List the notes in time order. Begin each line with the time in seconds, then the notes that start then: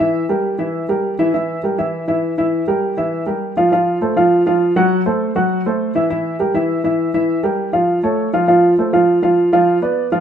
0.00 E3 E4 E5
0.29 G3 G4 A#4
0.58 E3 E4 E5
0.89 G3 G4 A#4
1.19 E3 E4 E5
1.34 E3 E4 E5
1.63 G3 G4 A#4
1.78 E3 E4 E5
2.08 E3 E4 E5
2.38 E3 E4 E5
2.68 G3 G4 A#4
2.97 E3 E4 E5
3.26 G3 G4 A#4
3.57 F3 F4 F5
3.72 F3 F4 F5
4.01 A3 A4 C5
4.16 F3 F4 F5
4.46 F3 F4 F5
4.76 F#3 F#4 F#5
5.06 A3 A4 C5
5.35 F#3 F#4 F#5
5.66 A3 A4 C5
5.95 E3 E4 E5
6.10 E3 E4 E5
6.39 G3 G4 A#4
6.54 E3 E4 E5
6.84 E3 E4 E5
7.14 E3 E4 E5
7.43 G3 G4 A#4
7.73 F3 F4 F5
8.03 A3 A4 C#5
8.33 F3 F4 F5
8.48 F3 F4 F5
8.78 A3 A4 C5
8.93 F3 F4 F5
9.22 F3 F4 F5
9.53 F3 F4 F5
9.82 B3 B4 D5
10.12 F3 F4 F5